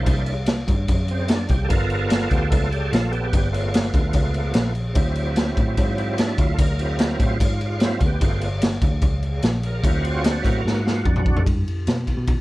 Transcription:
Already playing: tonewheel organ C5
0.06 picked electric bass C2, tonewheel organ A#3 D4 E4, kick, crash
0.26 crash
0.46 snare, crash
0.68 picked electric bass G2, kick, crash
0.88 picked electric bass F#2, kick, crash
1.08 tonewheel organ C4, crash
1.28 tonewheel organ D4, snare, crash
1.49 picked electric bass C2, tonewheel organ G4, kick, crash
1.64 tonewheel organ A4
1.69 picked electric bass G1, tonewheel organ B3 F4 A#4, kick, crash
1.90 crash
2.10 snare, crash
2.30 picked electric bass D2, tonewheel organ G4, kick, crash
2.51 picked electric bass C#2, tonewheel organ A3 B3 F4, kick, crash
2.72 tonewheel organ G4, crash
2.91 picked electric bass A#1, tonewheel organ F4, snare, crash
3.11 tonewheel organ B3 G4, crash
3.33 picked electric bass G1, kick, crash
3.52 tonewheel organ A3 B3 F4, crash
3.74 snare, crash
3.94 picked electric bass D2, kick, crash
4.13 picked electric bass C#2, kick, crash
4.34 crash
4.54 picked electric bass A#1, tonewheel organ A3 B3 F4, snare, crash
4.75 crash
4.94 picked electric bass D2, tonewheel organ F#3 C4 E4, kick, crash
5.15 crash
5.36 snare, crash
5.57 picked electric bass A2, kick, crash
5.77 picked electric bass G#2, kick, crash
5.97 tonewheel organ C4, crash
6.18 tonewheel organ D4, snare, crash
6.38 picked electric bass D2, tonewheel organ F4, kick, crash
6.54 tonewheel organ A4
6.58 picked electric bass D2, tonewheel organ A#4, kick, crash
6.79 tonewheel organ F#3 C4 E4, crash
6.99 snare, crash
7.20 picked electric bass A2, tonewheel organ F4, kick, crash
7.40 picked electric bass G#2, kick, crash
7.45 tonewheel organ F4
7.61 crash
7.66 tonewheel organ F4
7.80 tonewheel organ E4, snare, crash
7.84 tonewheel organ F#3 C4 F4
8.00 picked electric bass D2, kick, crash
8.06 tonewheel organ B3 G4
8.21 picked electric bass G1, tonewheel organ A3 B3 F4, kick, crash
8.41 crash
8.61 snare, crash
8.82 picked electric bass D2, kick, crash
9.01 picked electric bass C#2, kick, crash
9.23 crash
9.42 picked electric bass A#1, snare, crash
9.63 tonewheel organ A#4, crash
9.84 picked electric bass D2, tonewheel organ C4 E4 F#4, kick, crash
10.01 tonewheel organ E4, crash
10.06 tonewheel organ F4
10.21 tonewheel organ C#4, crash
10.26 tonewheel organ D4, snare
10.42 picked electric bass A2, tonewheel organ F#3 C4 E4 A#4, kick, crash
10.65 picked electric bass G#2, snare
10.80 tonewheel organ E4
10.85 tonewheel organ F4, snare
11.05 picked electric bass F2, tonewheel organ D4, kick
11.16 mid tom
11.26 tonewheel organ D4, kick
11.37 floor tom
11.46 picked electric bass G2, kick, ride
11.68 ride
11.87 picked electric bass B2, snare, ride
12.07 kick, ride
12.17 picked electric bass B2
12.27 kick, ride

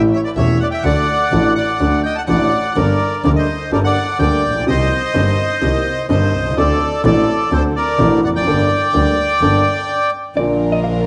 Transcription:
0.13 bandoneon C#5 E5
0.24 bandoneon B4 D5
0.36 double bass E1, grand piano E1 E2 E3 A3 C#4 G4, bandoneon C#5 E5
0.60 bandoneon D5 F#5
0.71 bandoneon E5 G5
0.83 double bass D2, grand piano D2 D3 F#3 A3 D4 A4, bandoneon D5 F#5
1.32 double bass A1, grand piano A1 A2 F#3 A3 D4 A4
1.55 bandoneon D5 F#5
1.80 double bass D2, grand piano D2 D3 F#3 A3 D4 A4
2.03 bandoneon D#5 G5
2.15 bandoneon F#5 A5
2.27 grand piano A1 A2 F#3 A3 D4 A4, double bass A1, bandoneon D5 F#5
2.75 grand piano G1 G2 G3 A#3 D4 A4, double bass G1, bandoneon A#4 D5
3.24 double bass D2, grand piano D2 D3 G3 A#3 D4 A4, bandoneon A#4 D5
3.36 bandoneon C5 D#5
3.72 grand piano G1 G2 G3 A#3 D4 A4, double bass G1, bandoneon A#4 D5
3.84 bandoneon D5 F#5
4.19 grand piano D2 D3 G3 A#3 D4 A4, double bass D2, bandoneon D5 G5
4.44 double bass A#1
4.50 grand piano A1
4.56 grand piano A#1
4.61 grand piano B1
4.67 grand piano C2 C3 D#3 A#3 C4 G4, double bass C2, bandoneon C5 D#5
5.14 grand piano G1 G2 D#3 A#3 C4 G4, double bass G1
5.61 grand piano C2 C3 D#3 A#3 C4 G4, double bass C2
6.09 grand piano G1 G2 D#3 A#3 C4 G4, double bass G1, bandoneon C5 D#5
6.33 double bass C2
6.39 grand piano B1
6.46 grand piano C2
6.51 grand piano C#2
6.57 double bass D2, grand piano D2 D3 F#3 C4 D4 A4, bandoneon A4 D5
7.04 grand piano A1 A2 F#3 C4 D4 A4, double bass A1, bandoneon A4 D5
7.51 grand piano D2 D3 F#3 C4 D4 A4, double bass D2, bandoneon A4 C5
7.76 bandoneon A#4 D5
7.99 double bass A1, grand piano A1 A2 F#3 C4 D4 A4
8.23 double bass F1, bandoneon D5 F#5
8.28 grand piano E2
8.35 grand piano F2, bandoneon D5 G5
8.41 grand piano F#2
8.46 double bass G1, grand piano G1 G2 G3 A#3 D4 A4
8.94 double bass D2, grand piano D2 D3 G3 A#3 D4 A4
9.41 double bass G1, grand piano G1 G2 G3 A#3 D4 A4
10.35 double bass A#1, grand piano A#1 A#2 D3 F3 A#3, string section D4 F4 A#4, hollow-body jazz guitar D5
10.39 grand piano F4
10.72 hollow-body jazz guitar D#5
10.84 hollow-body jazz guitar F5

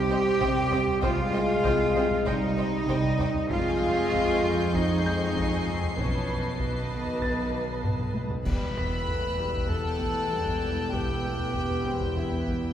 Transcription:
Already playing: double bass section C2, synth drone C2, french horn section C4, cello section G4, clarinet G5, grand piano F6
0.10 cello section C4, viola section C5, violin section D#5 G5
0.40 double bass section C2, cello section C3, viola section C5, violin section D#5 G5, taiko
0.56 taiko low
0.71 cello section C3, viola section C5, violin section D#5 G5, taiko low
0.87 taiko low
1.01 double bass section C2, cello section C3 F4, french horn section G#3, viola section C5, violin section D#5 G5, clarinet F5, taiko
1.33 cello section C4, viola section C5, violin section D#5 G5
1.63 double bass section C2, cello section C3, viola section C5, violin section D#5 G5, taiko
1.95 cello section C3, viola section C5, violin section D#5 G5
2.11 taiko low
2.26 double bass section C2, french horn section G3, cello section C4 D#4, viola section C5, violin section D#5 G5, clarinet D#5, taiko
2.57 cello section C4, viola section C5, violin section D#5 G5
2.88 double bass section C2, cello section C3, viola section C5, violin section D#5 G5, taiko
3.04 taiko low
3.19 cello section C3, viola section C5, violin section D#5 G5, taiko low
3.35 taiko low
3.49 cello section F2 F4, synth drone F2, double bass section F2, french horn section G#3, viola section C4, violin section D#5 G#5 C#6 G6 C7, clarinet F5, taiko
3.81 cello section F3
4.12 cello section F2, taiko
4.43 cello section F2
4.60 taiko low
4.73 cello section F3 D#4, french horn section G#3, viola section C4, violin section D#5 G#5, clarinet D#5, taiko
5.06 cello section F3, grand piano G6
5.36 cello section F2, taiko
5.52 taiko low
5.67 cello section F2, taiko low
5.83 taiko low
5.97 synth drone B1, double bass section B1, cello section B2 C#4, french horn section E3, viola section B4, clarinet C#5, violin section D#5 A5, taiko
6.30 cello section B3
6.50 violin section D6
6.60 cello section B2 B3, french horn section D#3, viola section B4, clarinet B4, violin section D#5 A5, taiko
6.92 cello section B2
7.06 taiko low
7.22 cello section B3, grand piano A6, taiko
7.54 cello section B3
7.84 cello section B2, taiko low-mid
7.99 taiko low-mid
8.15 cello section B2, taiko high
8.31 taiko low
8.45 double bass section E1, synth drone E2, cello section E2, viola section G3, french horn section G4 B4, clarinet B4, violin section G5 B5 E6 F#6, concert bass drum, taiko, crash
8.62 taiko low
8.77 cello section E2, viola section B3, grand piano B6
8.93 taiko low
9.08 cello section E2, viola section A3, taiko
9.24 taiko low
9.38 cello section E2, viola section G3
9.54 taiko
9.69 cello section E2, viola section B3, clarinet A4, violin section A5 G6, taiko low
10.00 cello section E3, viola section A3, taiko
10.32 cello section E2, viola section G3
10.47 taiko
10.62 cello section E2, taiko low
10.93 cello section E2, viola section B3, clarinet G4, violin section G5, taiko
11.09 taiko low
11.24 cello section E2, viola section A3
11.39 taiko low
11.54 cello section E2, viola section B3, taiko
11.70 taiko low
11.86 cello section E2, viola section C4
12.00 taiko
12.16 cello section E2, viola section B3, clarinet E4, violin section E5, taiko low
12.47 cello section E3, taiko

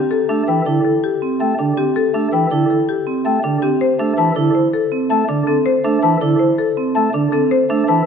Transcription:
Already playing: vibraphone C4, marimba G4
0.11 marimba A4
0.29 pipe organ A3, vibraphone D4
0.48 pipe organ E3, marimba G5
0.66 pipe organ D3, vibraphone E4
0.85 marimba A4
1.04 marimba G4
1.22 vibraphone C4
1.40 pipe organ A3, marimba G5
1.59 pipe organ D3, vibraphone D4
1.77 vibraphone C4, marimba G4
1.96 marimba A4
2.14 pipe organ A3, vibraphone D4
2.33 pipe organ E3, marimba G5
2.51 pipe organ D3, vibraphone E4
2.70 marimba A4
2.89 marimba G4
3.07 vibraphone C4
3.25 pipe organ A3, marimba G5
3.44 pipe organ D3, vibraphone D4
3.62 vibraphone C4, marimba G4
3.81 marimba C5
3.99 pipe organ A3, vibraphone D4
4.18 pipe organ E3, marimba A5
4.36 pipe organ D3, vibraphone E4
4.55 marimba C5
4.73 marimba A4
4.92 vibraphone C4
5.10 pipe organ A3, marimba A5
5.29 pipe organ D3, vibraphone D4
5.47 vibraphone C4, marimba A4
5.66 marimba C5
5.85 pipe organ A3, vibraphone D4
6.03 pipe organ E3, marimba A5
6.21 pipe organ D3, vibraphone E4
6.39 marimba C5
6.58 marimba A4
6.77 vibraphone C4
6.95 pipe organ A3, marimba A5
7.14 pipe organ D3, vibraphone D4
7.32 vibraphone C4, marimba A4
7.51 marimba C5
7.70 pipe organ A3, vibraphone D4
7.88 pipe organ E3, marimba A5

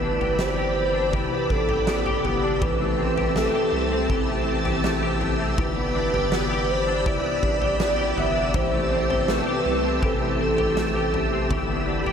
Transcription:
Already playing: sub bass G1, clean electric guitar E3 B3 G4, string machine G4 D5 B5 E6, soft synth lead B4
0.03 clean electric guitar D4
0.20 sub bass G1, clean electric guitar G4, floor tom
0.39 soft synth lead C5, snare
0.58 clean electric guitar G4
0.95 clean electric guitar D4
1.13 clean electric guitar E3 G4, soft synth lead B4, kick, floor tom
1.32 clean electric guitar B3
1.50 sub bass A1, clean electric guitar D4, soft synth lead A4, kick
1.69 clean electric guitar G4, floor tom
1.87 clean electric guitar B3, snare
2.06 clean electric guitar G4, floor tom
2.24 sub bass G1, clean electric guitar B3, soft synth lead G4, floor tom
2.43 clean electric guitar D4
2.61 sub bass A1, clean electric guitar E3 G4, string machine C4 G4 A5, soft synth lead B4, kick, floor tom
2.80 clean electric guitar A3
2.99 clean electric guitar C4
3.17 clean electric guitar G4, floor tom
3.36 clean electric guitar A3, soft synth lead A4, snare
3.54 clean electric guitar G4
3.72 sub bass C2, clean electric guitar A3
3.91 clean electric guitar C4
4.10 sub bass A1, clean electric guitar E3 G4, kick, floor tom
4.29 clean electric guitar A3
4.47 clean electric guitar C4
4.65 clean electric guitar G4, floor tom
4.84 clean electric guitar A3, snare
5.03 clean electric guitar G4
5.21 clean electric guitar A3, floor tom
5.39 clean electric guitar C4
5.58 sub bass G1, clean electric guitar E3 G4, soft synth lead B4, string machine D5 B5, kick, floor tom
5.76 clean electric guitar B3
5.95 clean electric guitar D4
6.13 sub bass G1, clean electric guitar G4, floor tom
6.32 clean electric guitar B3, snare
6.51 clean electric guitar G4
6.71 soft synth lead C5
6.88 clean electric guitar D4
7.06 clean electric guitar E3 G4, soft synth lead D5, kick, floor tom
7.25 clean electric guitar B3
7.43 sub bass A1, clean electric guitar D4, kick
7.61 clean electric guitar G4, floor tom
7.80 clean electric guitar B3, snare
7.98 clean electric guitar G4
8.17 sub bass G1, clean electric guitar B3, soft synth lead E5, floor tom
8.36 clean electric guitar D4
8.54 sub bass A1, clean electric guitar E3 G4, string machine C4 A5, soft synth lead C5, kick, floor tom
8.73 clean electric guitar A3
8.91 clean electric guitar C4
9.10 clean electric guitar G4, floor tom
9.28 clean electric guitar A3, soft synth lead B4, snare
9.47 clean electric guitar G4
9.65 sub bass C2, clean electric guitar A3
9.83 clean electric guitar C4
10.02 sub bass A1, clean electric guitar E3 G4, soft synth lead A4, kick, floor tom
10.21 clean electric guitar A3
10.40 clean electric guitar C4, soft synth lead A4
10.58 clean electric guitar G4, floor tom
10.77 clean electric guitar A3, snare
10.95 clean electric guitar G4
11.14 clean electric guitar A3, floor tom
11.33 clean electric guitar C4
11.50 sub bass G1, clean electric guitar E3 G4, string machine D5 B5, kick, floor tom
11.70 clean electric guitar B3
11.88 clean electric guitar D4
12.06 sub bass G1, clean electric guitar G4, floor tom

